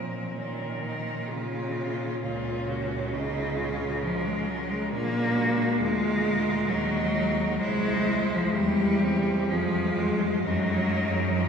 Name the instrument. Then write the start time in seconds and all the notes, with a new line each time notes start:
cello
Already playing: A#2 F3 C4 A#4
0.36 D#3 C#4
0.40 A#4
0.85 D#4
1.30 C#3 F4
2.22 C#2 A#2 C#4 F4
2.69 F#4
3.13 C#3 D#4 G#4
3.58 F4
4.01 F3 C#4 A#4
4.26 G#3
4.47 F#3
4.70 G#3
4.90 A#2 A#3 D4 F4
5.34 F#4
5.78 D2 G#3 F4 G#4
6.23 A#4
6.68 D#2 F#3 D#4 A#4
7.60 C2 G#3 E4 C5
8.34 F3
8.53 E2 E4 G4
8.57 G3
9.03 C4
9.51 F2 F3 F4 G#4
9.99 G#3
10.44 F#2 F#3 D#4 A#4
11.35 F3 D#4